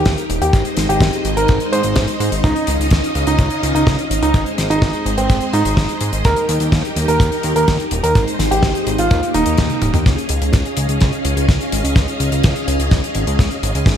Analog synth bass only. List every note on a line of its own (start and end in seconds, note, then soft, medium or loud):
0.06 0.16 D#2 loud
0.30 0.40 D#1 medium
0.41 0.52 D#2 medium
0.53 0.64 G#1 loud
0.77 0.88 G#1 medium
0.89 1.00 G#1 medium
1.01 1.11 G#1 loud
1.25 1.35 G#1 medium
1.37 1.47 G#1 medium
1.49 1.59 G#1 loud
1.72 1.83 G#2 medium
1.84 1.95 G#1 medium
1.96 2.07 G#1 loud
2.20 2.31 G#2 medium
2.32 2.42 G#1 medium
2.44 2.54 C#2 loud
2.68 2.78 C#2 medium
2.80 2.90 C#2 medium
2.91 3.02 C#2 loud
3.15 3.26 C#2 medium
3.27 3.38 C#2 medium
3.39 3.49 C#2 loud
3.63 3.73 C#2 medium
3.75 3.85 C#2 medium
3.87 3.97 C#2 loud
4.10 4.21 G#1 medium
4.22 4.33 C#2 medium
4.34 4.45 G#1 loud
4.58 4.69 G#1 medium
4.70 4.80 G#1 medium
4.82 4.92 G#1 medium
5.06 5.16 G#1 medium
5.18 5.28 G#1 medium
5.30 5.40 G#1 loud
5.53 5.64 G#2 loud
5.65 5.76 G#1 medium
5.77 5.88 G#1 loud
6.01 6.11 G#2 medium
6.13 6.23 G#1 medium
6.25 6.35 D#2 loud
6.49 6.59 D#2 medium
6.61 6.71 D#2 medium
6.72 6.83 D#2 loud
6.96 7.07 D#2 medium
7.08 7.19 D#2 medium
7.20 7.30 D#2 loud
7.44 7.54 D#2 medium
7.56 7.66 D#2 medium
7.68 7.78 D#2 medium
7.92 8.02 D#1 medium
8.04 8.14 D#2 medium
8.15 8.26 G#1 loud
8.39 8.50 G#1 medium
8.51 8.61 G#1 medium
8.63 8.73 G#1 loud
8.87 8.97 G#1 medium
8.99 9.09 G#1 medium
9.11 9.21 D#2 loud
9.34 9.45 D#1 medium
9.46 9.57 D#2 medium
9.59 9.69 D#2 loud
9.82 9.93 D#1 medium
9.94 10.04 D#2 medium
10.06 10.16 C#2 loud
10.30 10.40 C#2 medium
10.41 10.52 C#2 medium
10.54 10.64 C#2 medium
10.77 10.88 C#2 medium
10.89 11.00 C#2 medium
11.02 11.12 C#2 loud
11.25 11.35 C#2 loud
11.37 11.47 C#2 medium
11.49 11.59 C#2 loud
11.72 11.83 G#1 medium
11.84 11.95 C#2 medium
11.96 12.07 C#2 loud
12.20 12.31 C#2 medium
12.32 12.42 C#2 medium
12.44 12.55 C#2 loud
12.68 12.78 C#2 medium
12.80 12.90 C#2 medium
12.91 13.02 C#2 loud
13.15 13.26 G#1 medium
13.27 13.38 C#2 medium
13.39 13.50 C#2 loud
13.63 13.73 G#1 medium
13.75 13.85 C#2 medium
13.86 13.97 G#1 loud